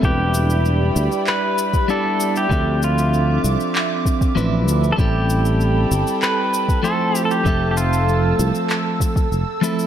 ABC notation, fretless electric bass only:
X:1
M:4/4
L:1/8
Q:1/4=97
K:Ephr
V:1 name="Fretless electric bass" clef=bass
E,,,3 D,, z4 | D,,3 C,, z2 A,,, D,, | A,,,3 G,,, z4 | F,,,3 C,, z2 F,,, z |]